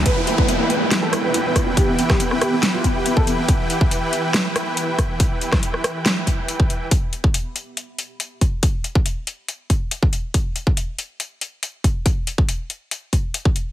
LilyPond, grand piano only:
\new Staff \with { instrumentName = "Grand piano" } { \time 4/4 \key e \minor \tempo 4 = 140 b'16 e'16 e'16 b'16 e'16 e'16 b'16 e'16 e'16 a'16 e'16 b'16 e'16 b'16 e'16 e'16 | g'16 b16 b16 g'16 b16 b16 g'16 b16 b16 f'16 b16 g'16 b16 a'16 b16 b16 | r1 | r1 |
r1 | r1 | r1 | r1 | }